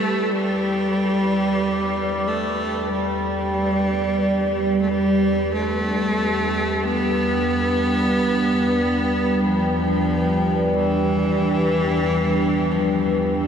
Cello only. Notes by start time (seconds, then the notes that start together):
Already playing: A3
0.32 G3
2.27 A3
2.92 G3
4.82 A3
4.88 G3
5.54 A3
6.84 B3
9.44 F3
10.75 E3
12.71 F3
13.35 E3